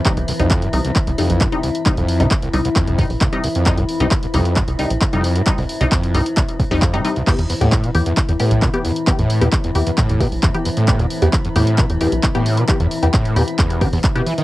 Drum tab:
CC |----------------|----------------|----------------|----------------|
HH |xxoxxxoxxxoxxxox|xxoxxxoxxxooxxox|xxoxxxoxxxoxxxox|xooxxxoxxxooxxox|
CP |x---x---x---x---|x---x---x---x---|x---x---x---x---|x---x---x---x---|
BD |o---o---o---o---|o---o---o-o-o---|o---o---o---o---|o---o---o-o-o---|

CC |x---------------|----------------|----------------|----------------|
HH |xxoxxxoxxxoxxxox|xxoxxxoxxxooxxox|xxoxxxoxxxoxxxox|xxoxxxoxxxooxxox|
CP |x---x---x---x---|x---x---x---x---|x---x---x---x---|x---x---x---x---|
BD |o---o---o---o---|o---o---o-o-o---|o---o---o---o---|o---o---o-o-o---|